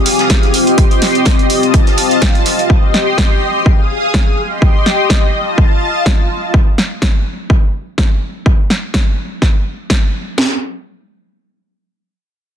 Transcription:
0.00 0.53 G#4 medium
0.00 0.53 F5 medium
0.00 0.53 D#6 medium
0.05 snare soft
0.05 closed hi-hat medium
0.05 open hi-hat loud
0.19 snare soft
0.19 closed hi-hat soft
0.29 kick loud
0.29 snare loud
0.29 closed hi-hat medium
0.43 snare soft
0.43 closed hi-hat soft
0.54 1.98 C4 medium
0.54 1.49 G4 medium
0.54 2.68 D#5 medium
0.54 1.49 C6 medium
0.54 closed hi-hat medium
0.54 open hi-hat loud
0.67 closed hi-hat soft
0.78 kick loud
0.78 closed hi-hat medium
0.91 closed hi-hat soft
1.02 snare soft
1.02 snare medium
1.02 closed hi-hat medium
1.02 open hi-hat loud
1.15 closed hi-hat soft
1.25 kick loud
1.25 snare loud
1.25 closed hi-hat medium
1.39 closed hi-hat soft
1.50 2.69 F4 medium
1.50 2.69 A5 medium
1.50 closed hi-hat medium
1.50 open hi-hat medium
1.63 closed hi-hat soft
1.73 kick loud
1.73 closed hi-hat medium
1.87 snare soft
1.87 closed hi-hat soft
1.97 closed hi-hat medium
1.97 open hi-hat loud
2.11 closed hi-hat soft
2.21 kick loud
2.21 snare loud
2.21 closed hi-hat medium
2.35 closed hi-hat soft
2.45 snare soft
2.45 closed hi-hat medium
2.45 open hi-hat medium
2.59 closed hi-hat soft
2.70 3.65 G4 medium
2.70 3.65 D#5 medium
2.70 3.65 C6 medium
2.70 kick loud
2.94 snare medium
3.18 kick loud
3.18 snare loud
3.66 4.37 G#4 medium
3.66 4.37 F5 medium
3.66 4.37 D#6 medium
3.66 kick loud
4.14 kick loud
4.14 snare loud
4.38 5.33 G4 medium
4.38 6.52 D#5 medium
4.38 5.33 C6 medium
4.62 kick loud
4.86 snare medium
5.10 kick loud
5.10 snare loud
5.34 6.53 F4 medium
5.34 6.53 A5 medium
5.58 kick loud
6.06 kick loud
6.06 snare loud
6.54 kick loud
6.78 snare medium
7.02 kick loud
7.02 snare loud
7.50 kick loud
7.98 kick loud
7.98 snare loud
8.46 kick loud
8.70 snare medium
8.94 kick loud
8.94 snare loud
9.42 kick loud
9.42 snare medium
9.90 kick loud
9.90 snare loud
10.38 snare loud

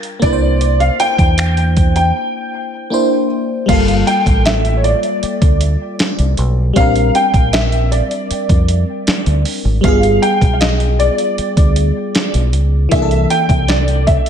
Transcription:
0.00 0.17 G3 medium
0.00 0.18 D4 medium
0.00 0.19 F4 medium
0.00 0.20 A#4 medium
0.00 closed hi-hat soft
0.19 0.89 C2 loud
0.19 2.86 A#3 medium
0.19 2.87 D4 medium
0.19 0.82 D5 loud
0.19 kick loud
0.19 closed hi-hat medium
0.24 2.88 E4 medium
0.24 0.31 B4 medium
0.33 2.92 C5 medium
0.61 closed hi-hat medium
0.80 0.98 F5 loud
0.80 closed hi-hat soft
1.00 1.95 G5 loud
1.00 closed hi-hat medium
1.19 2.11 E2 medium
1.19 kick medium
1.19 closed hi-hat soft
1.38 finger snap loud
1.38 closed hi-hat medium
1.57 closed hi-hat soft
1.77 kick medium
1.77 closed hi-hat medium
1.96 3.26 G5 medium
1.96 closed hi-hat soft
2.90 3.67 A#3 medium
2.90 3.68 D4 medium
2.90 3.69 E4 medium
2.90 3.70 C5 medium
3.66 4.02 G1 loud
3.66 6.71 G3 medium
3.66 6.72 A#3 medium
3.66 4.08 F5 loud
3.66 kick loud
3.66 closed hi-hat medium
3.66 crash loud
3.70 6.73 F4 medium
3.70 6.74 A4 medium
3.88 closed hi-hat soft
4.07 4.47 G5 loud
4.07 closed hi-hat medium
4.26 4.93 A1 medium
4.26 kick medium
4.26 closed hi-hat soft
4.46 4.78 E5 medium
4.46 snare loud
4.46 closed hi-hat medium
4.65 closed hi-hat soft
4.77 4.84 C#5 medium
4.84 6.34 D5 medium
4.84 closed hi-hat medium
5.03 closed hi-hat soft
5.23 muted fingered electric bass stroke soft
5.23 closed hi-hat medium
5.42 5.75 D2 medium
5.42 kick loud
5.42 closed hi-hat medium
5.61 closed hi-hat medium
5.99 snare loud
5.99 closed hi-hat medium
6.19 6.35 C2 medium
6.19 closed hi-hat soft
6.37 6.71 B1 loud
6.37 closed hi-hat medium
6.73 7.10 A#1 loud
6.73 9.78 G3 medium
6.73 9.80 C4 medium
6.73 7.16 F5 loud
6.73 kick loud
6.73 closed hi-hat medium
6.78 9.81 D4 medium
6.78 9.82 A#4 medium
6.96 closed hi-hat soft
7.15 7.51 G5 loud
7.15 closed hi-hat medium
7.34 8.00 A#1 medium
7.34 kick medium
7.34 closed hi-hat soft
7.53 7.89 E5 medium
7.53 snare loud
7.53 closed hi-hat medium
7.72 closed hi-hat soft
7.92 9.41 D5 medium
7.92 closed hi-hat medium
8.11 closed hi-hat medium
8.31 muted fingered electric bass stroke soft
8.31 closed hi-hat medium
8.49 8.83 F2 medium
8.49 kick loud
8.49 closed hi-hat medium
8.68 closed hi-hat medium
9.07 muted fingered electric bass stroke soft
9.07 snare loud
9.07 closed hi-hat medium
9.26 9.43 D2 medium
9.26 closed hi-hat soft
9.45 open hi-hat medium
9.65 9.81 G#1 medium
9.81 10.17 G1 loud
9.81 12.86 G3 medium
9.81 12.87 B3 medium
9.81 10.24 F5 loud
9.81 kick loud
9.81 closed hi-hat medium
9.85 12.88 F4 medium
9.85 12.89 G#4 medium
10.03 closed hi-hat soft
10.22 10.55 G5 loud
10.22 closed hi-hat medium
10.41 11.08 B1 medium
10.41 kick medium
10.41 closed hi-hat soft
10.53 10.61 F5 medium
10.61 10.69 D#5 medium
10.61 snare loud
10.61 closed hi-hat medium
10.80 closed hi-hat soft
10.99 12.49 D5 medium
10.99 closed hi-hat medium
11.18 closed hi-hat medium
11.38 muted fingered electric bass stroke soft
11.38 closed hi-hat medium
11.57 11.90 D2 medium
11.57 kick loud
11.57 closed hi-hat medium
11.76 closed hi-hat medium
12.15 snare loud
12.15 closed hi-hat medium
12.34 12.53 B1 medium
12.34 closed hi-hat medium
12.53 12.86 C#2 medium
12.53 closed hi-hat medium
12.89 13.25 C2 loud
12.89 14.29 E3 medium
12.89 14.29 A#3 medium
12.89 13.27 E5 loud
12.89 kick loud
12.89 closed hi-hat medium
12.93 14.29 D4 medium
12.93 13.00 G#4 medium
13.02 14.29 A4 medium
13.11 closed hi-hat soft
13.30 13.66 G5 loud
13.30 closed hi-hat medium
13.49 14.16 C2 medium
13.49 kick medium
13.49 closed hi-hat soft
13.68 14.04 D5 medium
13.68 snare loud
13.68 closed hi-hat medium
13.88 closed hi-hat soft
14.07 14.29 E5 medium
14.07 kick medium
14.07 closed hi-hat medium
14.26 closed hi-hat soft

